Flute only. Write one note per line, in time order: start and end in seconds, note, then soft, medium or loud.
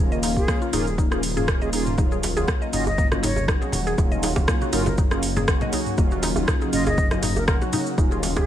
0.36 0.57 G#4 medium
0.73 0.82 G#4 medium
0.86 0.94 G#4 medium
1.62 1.69 G#4 medium
1.74 1.82 G#4 medium
2.74 2.84 D#5 medium
2.87 3.07 D#5 medium
3.24 3.45 C#5 medium
4.74 4.82 A#4 medium
4.87 4.94 A#4 medium
6.73 6.84 D#5 medium
6.87 7.08 D#5 medium
7.37 7.44 A#4 medium
7.48 7.57 A#4 medium
8.37 8.46 G#4 medium